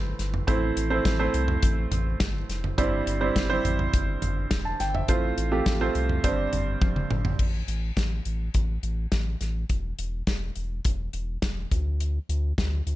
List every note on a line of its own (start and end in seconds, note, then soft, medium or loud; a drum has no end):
0.00 0.14 G1 medium
0.00 0.48 A2 medium
0.00 0.47 A3 medium
0.00 0.47 C4 medium
0.00 0.47 E4 medium
0.00 2.79 B4 medium
0.00 0.48 C5 medium
0.19 0.43 G1 loud
0.19 snare soft
0.19 closed hi-hat medium
0.34 floor tom medium
0.47 0.71 A1 loud
0.47 1.30 A2 medium
0.47 0.80 A3 medium
0.47 0.80 C4 medium
0.47 0.80 E4 medium
0.47 0.80 C5 medium
0.47 kick loud
0.47 closed hi-hat medium
0.77 1.00 A1 medium
0.77 closed hi-hat medium
0.90 1.12 A3 medium
0.90 1.12 C4 medium
0.90 1.12 E4 medium
0.90 1.12 C5 medium
1.05 1.29 A1 loud
1.05 kick medium
1.05 snare loud
1.05 closed hi-hat medium
1.19 2.06 A3 medium
1.19 2.05 C4 medium
1.19 2.06 E4 medium
1.19 2.06 C5 medium
1.34 1.58 C2 medium
1.34 closed hi-hat medium
1.48 floor tom medium
1.63 1.86 A1 medium
1.63 kick loud
1.63 closed hi-hat medium
1.91 2.15 A1 loud
1.91 closed hi-hat medium
1.91 floor tom medium
2.20 2.44 G1 medium
2.20 kick loud
2.20 snare medium
2.20 closed hi-hat medium
2.49 2.73 F1 medium
2.49 snare soft
2.49 closed hi-hat medium
2.64 floor tom medium
2.78 3.02 G1 loud
2.78 3.60 G2 medium
2.78 3.10 G3 medium
2.78 3.10 C4 medium
2.78 3.10 E4 medium
2.78 3.10 C5 medium
2.78 kick medium
2.78 closed hi-hat medium
3.07 3.31 G1 medium
3.07 closed hi-hat medium
3.21 3.43 G3 medium
3.21 3.43 C4 medium
3.21 3.43 E4 medium
3.21 3.43 C5 medium
3.36 3.59 G1 medium
3.36 kick medium
3.36 snare medium
3.36 closed hi-hat medium
3.50 4.36 G3 medium
3.50 4.36 C4 medium
3.50 4.36 E4 medium
3.50 4.36 C5 loud
3.65 3.88 A1 medium
3.65 closed hi-hat medium
3.65 floor tom medium
3.79 floor tom medium
3.94 4.17 G1 loud
3.94 kick loud
3.94 closed hi-hat medium
4.22 4.46 G1 medium
4.22 closed hi-hat medium
4.22 floor tom medium
4.51 4.75 E1 medium
4.51 kick medium
4.51 snare medium
4.51 closed hi-hat medium
4.65 4.79 A5 medium
4.80 5.04 G1 medium
4.80 4.94 G5 medium
4.80 snare soft
4.80 closed hi-hat medium
4.95 5.22 E5 medium
4.95 floor tom medium
5.08 5.32 A1 medium
5.08 5.91 A2 medium
5.08 5.41 A3 medium
5.08 5.41 C4 medium
5.08 5.41 F4 medium
5.08 5.41 C5 medium
5.08 kick medium
5.08 closed hi-hat medium
5.38 5.61 A1 medium
5.38 closed hi-hat medium
5.52 5.73 A3 medium
5.52 5.73 C4 medium
5.52 5.73 F4 medium
5.52 5.73 G4 medium
5.66 5.90 A1 medium
5.66 kick medium
5.66 snare loud
5.66 closed hi-hat medium
5.81 6.24 A3 medium
5.81 6.23 C4 medium
5.81 6.24 F4 medium
5.81 6.23 C5 medium
5.95 6.19 C2 medium
5.95 closed hi-hat medium
6.09 floor tom medium
6.24 6.48 G1 medium
6.24 7.06 G2 medium
6.24 7.16 G3 medium
6.24 7.16 C4 medium
6.24 7.16 D4 medium
6.24 7.16 C5 medium
6.24 kick loud
6.24 closed hi-hat medium
6.53 6.76 G1 medium
6.53 closed hi-hat medium
6.53 floor tom medium
6.81 7.05 F1 medium
6.81 kick loud
6.81 high tom soft
6.96 mid tom medium
7.11 7.34 G1 medium
7.11 mid tom medium
7.25 floor tom medium
7.39 7.63 A1 medium
7.39 kick medium
7.39 crash medium
7.68 7.92 A1 medium
7.68 closed hi-hat medium
7.97 8.20 A1 medium
7.97 kick medium
7.97 snare medium
7.97 closed hi-hat medium
8.25 8.49 A1 medium
8.25 closed hi-hat medium
8.54 8.78 A1 medium
8.54 kick medium
8.54 closed hi-hat medium
8.83 9.07 A1 medium
8.83 closed hi-hat medium
9.12 9.36 A1 medium
9.12 kick medium
9.12 snare medium
9.12 closed hi-hat medium
9.41 9.65 A1 medium
9.41 snare soft
9.41 closed hi-hat medium
9.69 9.93 E1 medium
9.69 kick medium
9.69 closed hi-hat medium
9.99 10.22 E1 medium
9.99 closed hi-hat medium
10.27 10.51 E1 medium
10.27 kick medium
10.27 snare medium
10.27 closed hi-hat medium
10.56 10.80 E1 medium
10.56 closed hi-hat medium
10.85 11.09 E1 medium
10.85 kick medium
10.85 closed hi-hat medium
11.13 11.37 E1 medium
11.13 closed hi-hat medium
11.42 11.66 E1 medium
11.42 kick medium
11.42 snare medium
11.42 closed hi-hat medium
11.71 12.19 D2 medium
11.71 kick medium
11.71 closed hi-hat medium
12.00 closed hi-hat medium
12.29 12.53 D2 medium
12.29 closed hi-hat medium
12.58 12.82 D2 loud
12.58 kick medium
12.58 snare medium
12.58 closed hi-hat medium
12.87 12.96 D2 medium
12.87 closed hi-hat medium